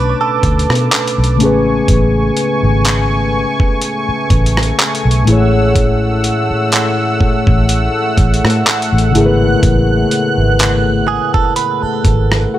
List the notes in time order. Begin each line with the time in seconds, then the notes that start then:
Already playing: B1 B2 A3 C#4 D4 B4 A5 D6
0.21 A4
0.43 D2, kick, closed hi-hat
0.59 closed hi-hat
0.69 B2, cross-stick
0.75 closed hi-hat
0.91 clap, closed hi-hat
1.07 closed hi-hat
1.18 B1
1.24 closed hi-hat
1.36 C#3 A3 G#5 C#6, closed hi-hat
1.40 A1 C#4 G#4
1.45 B4
1.88 A1, kick, closed hi-hat
2.37 closed hi-hat
2.63 G#1
2.85 clap, closed hi-hat
3.60 kick
3.82 closed hi-hat
4.09 muted fingered electric bass stroke
4.30 A1, kick, closed hi-hat
4.46 closed hi-hat
4.57 cross-stick
4.63 closed hi-hat
4.79 clap, closed hi-hat
4.95 closed hi-hat
5.05 B1
5.11 closed hi-hat
5.23 A2 A3 F#5 E6
5.27 A1 E4 G#4, closed hi-hat
5.32 C#5
5.76 kick, closed hi-hat
6.24 closed hi-hat
6.51 muted fingered electric bass stroke
6.72 clap, closed hi-hat
7.21 muted fingered electric bass stroke, kick
7.47 A1, kick
7.69 closed hi-hat
8.18 A1, kick, closed hi-hat
8.34 closed hi-hat
8.44 A2, cross-stick
8.50 closed hi-hat
8.66 clap, closed hi-hat
8.82 closed hi-hat
8.93 A1
8.98 closed hi-hat
9.11 C#3 A3 F#6
9.15 G#1 E4 G#4, closed hi-hat
9.19 A#4
9.26 B4
9.63 A1, kick, closed hi-hat
10.11 closed hi-hat
10.38 G#1
10.59 clap, closed hi-hat
11.08 G#4
11.34 A4, kick
11.56 B4, closed hi-hat
11.82 A4, muted fingered electric bass stroke
12.05 G#1, kick, closed hi-hat
12.32 cross-stick
12.54 A4 F#5